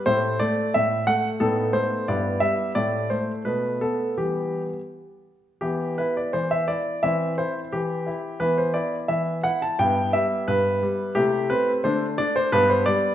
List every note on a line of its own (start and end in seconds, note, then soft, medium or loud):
0.06 0.39 A2 medium
0.06 0.39 A3 soft
0.06 1.37 E4 soft
0.06 0.39 C5 medium
0.40 0.73 A3 medium
0.40 0.73 D5 medium
0.74 1.07 A2 medium
0.74 1.04 E5 medium
1.07 1.40 A3 medium
1.07 1.27 F#5 medium
1.40 1.73 A2 medium
1.40 2.04 B3 soft
1.40 2.04 D#4 soft
1.40 1.74 A4 medium
1.73 2.06 A3 soft
1.73 2.07 C5 medium
2.08 2.41 G2 medium
2.08 2.72 B3 soft
2.08 2.72 E4 soft
2.08 2.42 D5 medium
2.40 2.74 G3 medium
2.40 2.71 E5 medium
2.75 3.09 A2 medium
2.75 3.09 A3 soft
2.75 3.41 E4 soft
2.75 3.10 D5 medium
3.10 3.44 A3 soft
3.10 3.31 C5 medium
3.45 3.80 B2 medium
3.45 4.13 A3 soft
3.45 3.80 B3 soft
3.45 3.81 B4 medium
3.81 4.16 B3 soft
3.81 4.14 A4 medium
4.17 4.68 E3 soft
4.17 4.76 G3 soft
4.17 4.75 B3 soft
4.17 4.61 G4 medium
5.61 5.97 E3 soft
5.61 7.00 B3 soft
5.61 5.97 E4 soft
5.61 5.94 G4 medium
5.98 6.33 E4 soft
5.98 6.16 B4 medium
6.17 6.34 D5 medium
6.33 6.68 E3 soft
6.33 6.51 C5 medium
6.51 6.69 E5 medium
6.68 7.02 E4 soft
6.68 7.03 D5 medium
7.03 7.37 E3 medium
7.03 8.37 C4 soft
7.03 7.37 E4 soft
7.03 7.34 E5 medium
7.38 7.71 E4 soft
7.38 7.59 C5 medium
7.72 8.06 E3 soft
7.72 8.41 G4 medium
8.06 8.39 E4 soft
8.40 8.74 E3 medium
8.40 9.76 B3 soft
8.40 8.73 E4 soft
8.40 8.58 B4 medium
8.58 8.75 C5 medium
8.74 9.08 E4 soft
8.74 8.95 D5 medium
9.08 9.43 E3 soft
9.08 9.41 E5 medium
9.43 9.78 E4 medium
9.43 9.62 F#5 medium
9.62 9.80 A5 medium
9.79 10.13 G2 medium
9.79 11.12 B3 soft
9.79 11.12 E4 soft
9.79 10.14 G5 medium
10.13 10.47 G3 medium
10.13 10.48 E5 medium
10.48 10.81 G2 medium
10.48 11.16 B4 medium
10.83 11.15 G3 medium
11.15 11.49 C3 medium
11.15 11.80 A3 soft
11.15 11.80 E4 soft
11.15 11.46 G4 medium
11.50 11.83 C4 medium
11.50 11.70 B4 medium
11.84 12.18 D3 medium
11.84 12.49 A3 soft
11.84 12.17 D4 soft
11.84 12.05 C5 medium
12.18 12.51 D4 medium
12.18 12.35 D5 loud
12.36 12.53 C5 medium
12.52 12.86 G2 medium
12.52 13.15 B3 medium
12.52 13.15 D4 medium
12.52 12.70 B4 loud
12.70 12.87 C5 medium
12.86 13.15 G3 medium
12.86 13.15 D5 medium